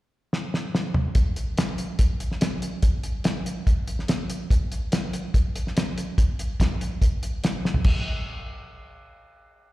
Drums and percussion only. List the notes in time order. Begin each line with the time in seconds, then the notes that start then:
0.33 snare
0.54 snare
0.75 snare
0.94 mid tom
1.15 kick, closed hi-hat
1.36 closed hi-hat
1.58 snare, closed hi-hat
1.78 closed hi-hat
1.99 kick, closed hi-hat
2.20 closed hi-hat
2.32 snare
2.41 snare, closed hi-hat
2.62 closed hi-hat
2.83 kick, closed hi-hat
3.03 closed hi-hat
3.24 snare, closed hi-hat
3.46 closed hi-hat
3.67 kick, closed hi-hat
3.88 closed hi-hat
3.99 snare
4.08 snare, closed hi-hat
4.30 closed hi-hat
4.50 kick, closed hi-hat
4.72 closed hi-hat
4.92 snare, closed hi-hat
5.13 closed hi-hat
5.34 kick, closed hi-hat
5.56 closed hi-hat
5.67 snare
5.77 snare, closed hi-hat
5.98 closed hi-hat
6.18 kick, closed hi-hat
6.39 closed hi-hat
6.60 kick, snare, closed hi-hat
6.81 closed hi-hat
7.02 kick, closed hi-hat
7.23 closed hi-hat
7.44 snare, closed hi-hat
7.65 snare
7.74 floor tom
7.84 kick, crash